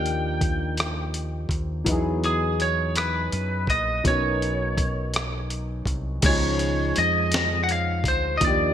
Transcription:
Already playing: D#2 F3 A#3 D4 D#4 G4 G5
0.06 closed hi-hat
0.41 kick, closed hi-hat
0.77 cross-stick, closed hi-hat
1.14 closed hi-hat
1.49 D#2, kick, closed hi-hat
1.84 E2 F#3 B3 D#4, kick, closed hi-hat
1.89 E4 G#4
2.24 G#4, closed hi-hat
2.60 C#5, closed hi-hat
2.96 B4, cross-stick, closed hi-hat
3.32 F#2, closed hi-hat
3.67 A#1 D#5, kick, closed hi-hat
4.04 B1 F#3 B3 C#4, kick, closed hi-hat
4.08 D#4 A#4 C#5
4.42 closed hi-hat
4.78 kick, closed hi-hat
5.14 cross-stick, closed hi-hat
5.50 closed hi-hat
5.86 C2, kick, closed hi-hat
6.21 C#2 D#3 G#3 C#4, kick, closed hi-hat, crash
6.26 F3 D#4 G#4 C#5
6.59 closed hi-hat
6.96 F2 D#5, closed hi-hat
7.32 snare, closed hi-hat
7.64 F#5
7.69 F5, closed hi-hat
8.04 D2, kick, closed hi-hat
8.08 C5
8.37 F3 D#5, kick, closed hi-hat
8.42 D#2 A#3 D4 D#4 D5
8.46 G4

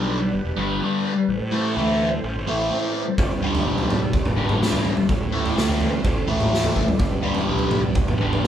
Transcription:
Already playing: B1 G2 D3 G3 B3 D4 G4 B4
0.33 G1
0.44 E1
0.57 G1 G2 D3 G3
0.81 G2 D3 G3
1.26 A1 C4 E4 A4 C5
1.40 A2
1.52 A2 E3 A3
1.76 D2 A2 E3 A3
2.23 A1
2.36 G1
2.47 A1 A2 E3 A3
2.70 A2 E3 A3
3.18 G1 B3 D4 G4 B4, kick, floor tom
3.31 G2
3.42 G2 D3 G3
3.55 floor tom
3.65 B1 G2 D3 G3
3.78 floor tom
3.90 floor tom, mid tom
4.13 G1, kick, floor tom
4.25 E1, mid tom
4.36 G1 G2 D3 G3
4.49 mid tom
4.61 G2 D3 G3, snare
4.72 floor tom, mid tom
4.85 floor tom
4.97 floor tom
5.09 A1 C4 E4 A4 C5, kick, floor tom
5.21 A2
5.32 A2 E3 A3
5.46 floor tom
5.56 D2 A2 E3 A3, snare
5.69 floor tom
5.81 floor tom
6.04 A1, kick, floor tom
6.17 G1
6.27 A1 A2 E3 A3
6.40 mid tom
6.51 A2 E3 A3, snare
6.64 floor tom, mid tom
6.76 kick, floor tom
6.88 floor tom
6.99 G1 B3 D4 G4 B4, kick, floor tom
7.12 G2
7.23 G2 D3 G3
7.34 floor tom
7.48 B1 G2 D3 G3
7.59 floor tom
7.71 floor tom, mid tom
7.95 G1, kick, floor tom
8.07 E1, mid tom
8.20 G1 G2 D3 G3
8.33 mid tom
8.44 G2 D3

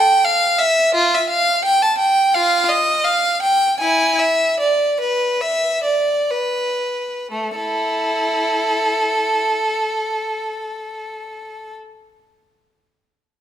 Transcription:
Already playing: G5
0.24 F5
0.59 E5
0.95 F4
1.15 E5
1.29 F5
1.65 G5
1.83 A5
1.98 G5
2.34 F4 F5
2.69 D#5
3.05 F5
3.42 G5
3.80 E4 G#5
4.19 E5
4.60 D5
5.01 B4
5.41 E5
5.84 D5
6.31 B4
7.31 A3
7.56 E4 A4

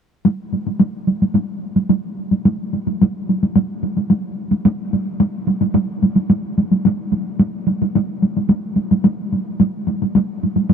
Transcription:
0.25 taiko high
0.53 taiko high
0.67 taiko high
0.80 taiko high
1.08 taiko high
1.22 taiko high
1.35 taiko high
1.76 taiko high
1.89 taiko high
2.31 taiko high
2.45 taiko high
2.73 taiko high
2.87 taiko high
3.02 taiko high
3.29 taiko high
3.43 taiko high
3.56 taiko high
3.83 taiko high
3.97 taiko high
4.10 taiko high
4.52 taiko high
4.66 taiko high
4.93 taiko high
5.20 taiko high
5.48 taiko high
5.61 taiko high
5.75 taiko high
6.03 taiko high
6.16 taiko high
6.30 taiko high
6.58 taiko high
6.71 taiko high
6.85 taiko high
7.12 taiko high
7.39 taiko high
7.67 taiko high
7.82 taiko high
7.95 taiko high
8.22 taiko high
8.37 taiko high
8.49 taiko high
8.76 taiko high
8.91 taiko high
9.04 taiko high
9.32 taiko high
9.60 taiko high
9.87 taiko high
10.02 taiko high
10.15 taiko high
10.44 taiko high
10.56 taiko high
10.70 taiko high

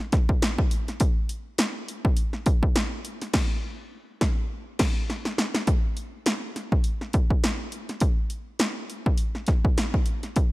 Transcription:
0.12 kick, snare, closed hi-hat
0.29 kick
0.42 snare, closed hi-hat
0.58 kick
0.71 closed hi-hat
0.88 snare, closed hi-hat
1.00 kick, closed hi-hat
1.29 closed hi-hat
1.58 snare, closed hi-hat
1.88 closed hi-hat
2.05 kick
2.17 closed hi-hat
2.33 snare
2.46 kick, closed hi-hat
2.63 kick
2.76 snare, closed hi-hat
3.05 closed hi-hat
3.21 snare, closed hi-hat
3.33 kick, snare, crash
4.21 kick, snare
4.79 kick, snare, crash
5.10 snare
5.25 snare
5.38 snare
5.55 snare
5.67 kick, closed hi-hat
5.97 closed hi-hat
6.26 snare, closed hi-hat
6.56 snare, closed hi-hat
6.72 kick
6.84 closed hi-hat
7.01 snare
7.13 kick, closed hi-hat
7.30 kick
7.44 snare, closed hi-hat
7.72 closed hi-hat
7.89 snare, closed hi-hat
8.00 kick, closed hi-hat
8.30 closed hi-hat
8.59 snare, closed hi-hat
8.90 closed hi-hat
9.06 kick
9.18 closed hi-hat
9.35 snare
9.47 kick, snare, closed hi-hat
9.65 kick
9.78 snare, closed hi-hat
9.94 kick
10.06 closed hi-hat
10.23 snare, closed hi-hat
10.36 kick, closed hi-hat

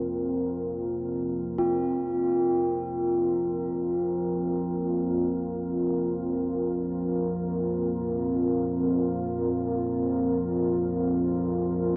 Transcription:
Already playing: A#1 F2 C4 F4 A#4
1.58 A#1 F2 F4

